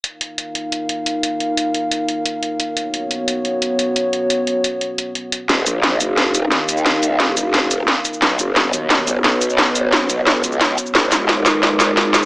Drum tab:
HH |x-x-x-x-x-x-x-x-|x-x-x-x-x-x-x-x-|x-x-x-x-x-x-x-x-|x-x-x-x-x-x-x-x-|
SH |----------------|----------------|----------------|----------------|
SD |----------------|----------------|----------------|----------------|

HH |x-x-x-x-x-x-x-x-|x-x-x-x-x-x-x-x-|x-x-x-x-x-x-x-x-|x-x-x-x-x-x-x-x-|
SH |--x---x---x---xx|--x---x---x---xx|--x---x---x---xx|--x---x---xx--xx|
SD |o---o---o---o---|o---o---o---o---|o---o---o---o---|o---o---o---o---|

HH |x-x-x-x-x-x-x-x-|
SH |--x---x---x---x-|
SD |o-o-o-o-o-o-o-o-|